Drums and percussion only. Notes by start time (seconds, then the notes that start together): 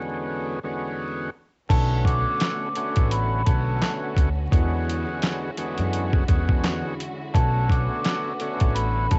1.70 kick, closed hi-hat, crash
2.05 kick, closed hi-hat
2.40 snare, clap, closed hi-hat
2.75 closed hi-hat
2.95 kick, closed hi-hat
3.11 closed hi-hat
3.46 kick, closed hi-hat
3.82 snare, clap, closed hi-hat
4.17 kick, closed hi-hat
4.52 kick, closed hi-hat
4.90 closed hi-hat
5.22 snare, clap, closed hi-hat
5.57 closed hi-hat
5.78 closed hi-hat
5.93 closed hi-hat
6.13 kick
6.28 kick, closed hi-hat
6.49 kick
6.64 snare, clap, closed hi-hat
7.00 closed hi-hat
7.35 kick, closed hi-hat
7.69 kick, closed hi-hat
8.04 snare, clap, closed hi-hat
8.40 closed hi-hat
8.60 kick, closed hi-hat
8.76 closed hi-hat
9.11 kick, closed hi-hat